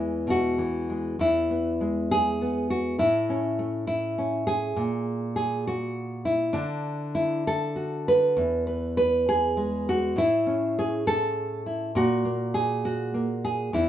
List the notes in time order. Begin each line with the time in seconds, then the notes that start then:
Already playing: E2 E3 G#3 E4
0.27 B2 F#4
0.58 E3
0.90 G#3
1.19 E2 E4
1.50 B3
1.81 G#3
2.11 G#4
2.41 B3
2.70 F#4
2.99 A2 E4
3.29 C#4
3.59 A3
3.87 E4
4.18 C#4
4.47 G#4
4.76 A#2
5.36 G#4
5.67 F#4
6.25 E4
6.53 D3 D4
7.15 E4
7.47 A4
7.76 F#4
8.08 B4
8.37 E2
8.67 B4
8.97 B4
9.29 G#4
9.57 G#3
9.89 F#4
10.16 A2 E4
10.47 C#4
10.79 G#4
11.07 A4
11.66 E4
11.95 A#2 F#4
12.25 A#3
12.54 G#4
12.85 F#4
13.14 A#3
13.45 G#4
13.73 E2 E4